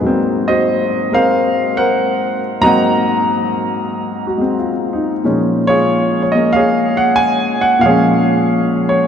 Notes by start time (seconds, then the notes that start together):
Already playing: G#4
0.01 G#2 F#3 A#3
0.06 C4
0.48 F#4 C5 D#5
1.12 G#3 C4 A#4 C5 F5
1.77 A#4 C5 F#5
2.61 G#2 F#3 A#3 D#5 F#5 A#5
2.66 C4
4.27 F#4
4.38 G#3 C4
4.59 F4
4.93 D#4
5.24 A#2 F3 G#3 C#4
5.67 F4 G#4 C#5
6.23 C#5
6.32 G#3 A#3 D#5
6.37 C#4
6.53 G#4 C#5 F5
6.97 F#5
7.16 G#5
7.61 F#5
7.79 A#2 F3 F5
7.86 G#3 G#4 C#5
7.90 C#4
8.89 C#5